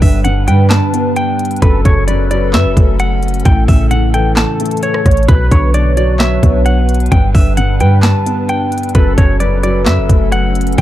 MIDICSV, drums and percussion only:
0, 0, Header, 1, 2, 480
1, 0, Start_track
1, 0, Tempo, 458015
1, 1699, Time_signature, 4, 2, 24, 8
1, 11334, End_track
2, 0, Start_track
2, 0, Title_t, "Drums"
2, 20, Note_on_c, 9, 36, 94
2, 22, Note_on_c, 9, 46, 84
2, 125, Note_off_c, 9, 36, 0
2, 127, Note_off_c, 9, 46, 0
2, 258, Note_on_c, 9, 42, 93
2, 363, Note_off_c, 9, 42, 0
2, 499, Note_on_c, 9, 42, 86
2, 604, Note_off_c, 9, 42, 0
2, 735, Note_on_c, 9, 39, 98
2, 740, Note_on_c, 9, 38, 123
2, 740, Note_on_c, 9, 42, 71
2, 840, Note_off_c, 9, 39, 0
2, 845, Note_off_c, 9, 38, 0
2, 845, Note_off_c, 9, 42, 0
2, 982, Note_on_c, 9, 42, 93
2, 1086, Note_off_c, 9, 42, 0
2, 1218, Note_on_c, 9, 42, 83
2, 1323, Note_off_c, 9, 42, 0
2, 1460, Note_on_c, 9, 42, 63
2, 1520, Note_off_c, 9, 42, 0
2, 1520, Note_on_c, 9, 42, 62
2, 1580, Note_off_c, 9, 42, 0
2, 1580, Note_on_c, 9, 42, 62
2, 1639, Note_off_c, 9, 42, 0
2, 1639, Note_on_c, 9, 42, 64
2, 1699, Note_off_c, 9, 42, 0
2, 1699, Note_on_c, 9, 36, 113
2, 1699, Note_on_c, 9, 42, 75
2, 1804, Note_off_c, 9, 36, 0
2, 1804, Note_off_c, 9, 42, 0
2, 1940, Note_on_c, 9, 36, 95
2, 1942, Note_on_c, 9, 42, 84
2, 2044, Note_off_c, 9, 36, 0
2, 2046, Note_off_c, 9, 42, 0
2, 2178, Note_on_c, 9, 42, 96
2, 2282, Note_off_c, 9, 42, 0
2, 2419, Note_on_c, 9, 42, 83
2, 2524, Note_off_c, 9, 42, 0
2, 2656, Note_on_c, 9, 39, 93
2, 2660, Note_on_c, 9, 38, 124
2, 2660, Note_on_c, 9, 42, 69
2, 2760, Note_off_c, 9, 39, 0
2, 2765, Note_off_c, 9, 38, 0
2, 2765, Note_off_c, 9, 42, 0
2, 2900, Note_on_c, 9, 36, 100
2, 2903, Note_on_c, 9, 42, 92
2, 3005, Note_off_c, 9, 36, 0
2, 3008, Note_off_c, 9, 42, 0
2, 3139, Note_on_c, 9, 42, 83
2, 3244, Note_off_c, 9, 42, 0
2, 3380, Note_on_c, 9, 42, 60
2, 3439, Note_off_c, 9, 42, 0
2, 3439, Note_on_c, 9, 42, 62
2, 3499, Note_off_c, 9, 42, 0
2, 3499, Note_on_c, 9, 42, 62
2, 3559, Note_off_c, 9, 42, 0
2, 3559, Note_on_c, 9, 42, 63
2, 3619, Note_off_c, 9, 42, 0
2, 3619, Note_on_c, 9, 36, 114
2, 3619, Note_on_c, 9, 42, 76
2, 3724, Note_off_c, 9, 36, 0
2, 3724, Note_off_c, 9, 42, 0
2, 3859, Note_on_c, 9, 36, 99
2, 3861, Note_on_c, 9, 46, 82
2, 3964, Note_off_c, 9, 36, 0
2, 3966, Note_off_c, 9, 46, 0
2, 4097, Note_on_c, 9, 42, 95
2, 4202, Note_off_c, 9, 42, 0
2, 4339, Note_on_c, 9, 42, 82
2, 4444, Note_off_c, 9, 42, 0
2, 4575, Note_on_c, 9, 39, 98
2, 4579, Note_on_c, 9, 38, 123
2, 4579, Note_on_c, 9, 42, 72
2, 4679, Note_off_c, 9, 39, 0
2, 4684, Note_off_c, 9, 38, 0
2, 4684, Note_off_c, 9, 42, 0
2, 4819, Note_on_c, 9, 42, 94
2, 4879, Note_off_c, 9, 42, 0
2, 4879, Note_on_c, 9, 42, 82
2, 4939, Note_off_c, 9, 42, 0
2, 4939, Note_on_c, 9, 42, 67
2, 5000, Note_off_c, 9, 42, 0
2, 5000, Note_on_c, 9, 42, 54
2, 5058, Note_off_c, 9, 42, 0
2, 5058, Note_on_c, 9, 42, 87
2, 5163, Note_off_c, 9, 42, 0
2, 5180, Note_on_c, 9, 37, 104
2, 5285, Note_off_c, 9, 37, 0
2, 5299, Note_on_c, 9, 36, 88
2, 5299, Note_on_c, 9, 42, 75
2, 5300, Note_on_c, 9, 37, 70
2, 5359, Note_off_c, 9, 42, 0
2, 5359, Note_on_c, 9, 42, 63
2, 5403, Note_off_c, 9, 36, 0
2, 5405, Note_off_c, 9, 37, 0
2, 5419, Note_off_c, 9, 42, 0
2, 5419, Note_on_c, 9, 42, 54
2, 5479, Note_off_c, 9, 42, 0
2, 5479, Note_on_c, 9, 42, 43
2, 5539, Note_off_c, 9, 42, 0
2, 5539, Note_on_c, 9, 36, 118
2, 5539, Note_on_c, 9, 42, 77
2, 5643, Note_off_c, 9, 42, 0
2, 5644, Note_off_c, 9, 36, 0
2, 5779, Note_on_c, 9, 36, 98
2, 5780, Note_on_c, 9, 42, 83
2, 5884, Note_off_c, 9, 36, 0
2, 5885, Note_off_c, 9, 42, 0
2, 6016, Note_on_c, 9, 42, 91
2, 6121, Note_off_c, 9, 42, 0
2, 6258, Note_on_c, 9, 42, 83
2, 6362, Note_off_c, 9, 42, 0
2, 6493, Note_on_c, 9, 39, 99
2, 6497, Note_on_c, 9, 38, 121
2, 6497, Note_on_c, 9, 42, 67
2, 6597, Note_off_c, 9, 39, 0
2, 6602, Note_off_c, 9, 38, 0
2, 6602, Note_off_c, 9, 42, 0
2, 6739, Note_on_c, 9, 36, 99
2, 6740, Note_on_c, 9, 42, 90
2, 6843, Note_off_c, 9, 36, 0
2, 6845, Note_off_c, 9, 42, 0
2, 6977, Note_on_c, 9, 42, 83
2, 7081, Note_off_c, 9, 42, 0
2, 7218, Note_on_c, 9, 42, 60
2, 7278, Note_off_c, 9, 42, 0
2, 7278, Note_on_c, 9, 42, 61
2, 7338, Note_off_c, 9, 42, 0
2, 7338, Note_on_c, 9, 42, 60
2, 7399, Note_off_c, 9, 42, 0
2, 7399, Note_on_c, 9, 42, 61
2, 7459, Note_off_c, 9, 42, 0
2, 7459, Note_on_c, 9, 36, 115
2, 7459, Note_on_c, 9, 42, 77
2, 7563, Note_off_c, 9, 36, 0
2, 7564, Note_off_c, 9, 42, 0
2, 7699, Note_on_c, 9, 36, 98
2, 7700, Note_on_c, 9, 46, 81
2, 7803, Note_off_c, 9, 36, 0
2, 7805, Note_off_c, 9, 46, 0
2, 7936, Note_on_c, 9, 42, 95
2, 8041, Note_off_c, 9, 42, 0
2, 8178, Note_on_c, 9, 42, 85
2, 8283, Note_off_c, 9, 42, 0
2, 8413, Note_on_c, 9, 39, 95
2, 8417, Note_on_c, 9, 42, 69
2, 8418, Note_on_c, 9, 38, 122
2, 8518, Note_off_c, 9, 39, 0
2, 8522, Note_off_c, 9, 38, 0
2, 8522, Note_off_c, 9, 42, 0
2, 8661, Note_on_c, 9, 42, 91
2, 8766, Note_off_c, 9, 42, 0
2, 8897, Note_on_c, 9, 42, 82
2, 9002, Note_off_c, 9, 42, 0
2, 9138, Note_on_c, 9, 42, 61
2, 9198, Note_off_c, 9, 42, 0
2, 9198, Note_on_c, 9, 42, 61
2, 9258, Note_off_c, 9, 42, 0
2, 9258, Note_on_c, 9, 42, 61
2, 9317, Note_off_c, 9, 42, 0
2, 9317, Note_on_c, 9, 42, 61
2, 9377, Note_off_c, 9, 42, 0
2, 9377, Note_on_c, 9, 42, 79
2, 9378, Note_on_c, 9, 36, 114
2, 9482, Note_off_c, 9, 42, 0
2, 9483, Note_off_c, 9, 36, 0
2, 9618, Note_on_c, 9, 36, 99
2, 9618, Note_on_c, 9, 42, 82
2, 9723, Note_off_c, 9, 36, 0
2, 9723, Note_off_c, 9, 42, 0
2, 9854, Note_on_c, 9, 42, 93
2, 9959, Note_off_c, 9, 42, 0
2, 10097, Note_on_c, 9, 42, 83
2, 10201, Note_off_c, 9, 42, 0
2, 10332, Note_on_c, 9, 39, 96
2, 10337, Note_on_c, 9, 38, 125
2, 10337, Note_on_c, 9, 42, 70
2, 10437, Note_off_c, 9, 39, 0
2, 10442, Note_off_c, 9, 38, 0
2, 10442, Note_off_c, 9, 42, 0
2, 10579, Note_on_c, 9, 36, 98
2, 10580, Note_on_c, 9, 42, 92
2, 10683, Note_off_c, 9, 36, 0
2, 10685, Note_off_c, 9, 42, 0
2, 10817, Note_on_c, 9, 42, 82
2, 10922, Note_off_c, 9, 42, 0
2, 11059, Note_on_c, 9, 42, 61
2, 11119, Note_off_c, 9, 42, 0
2, 11119, Note_on_c, 9, 42, 63
2, 11180, Note_off_c, 9, 42, 0
2, 11180, Note_on_c, 9, 42, 62
2, 11239, Note_off_c, 9, 42, 0
2, 11239, Note_on_c, 9, 42, 64
2, 11299, Note_off_c, 9, 42, 0
2, 11299, Note_on_c, 9, 36, 113
2, 11299, Note_on_c, 9, 42, 78
2, 11334, Note_off_c, 9, 36, 0
2, 11334, Note_off_c, 9, 42, 0
2, 11334, End_track
0, 0, End_of_file